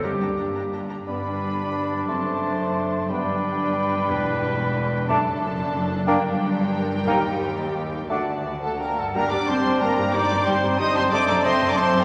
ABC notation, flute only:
X:1
M:3/4
L:1/16
Q:1/4=180
K:Gm
V:1 name="Flute"
z12 | [K:G] b12 | c'12 | b12- |
b12 | [K:Gm] a2 z8 z2 | g2 z8 z2 | g2 z8 z2 |
^f2 z4 f2 g2 f2 | g2 b2 a4 g4 | b4 g4 c'2 a2 | a2 b2 a3 b a3 g |]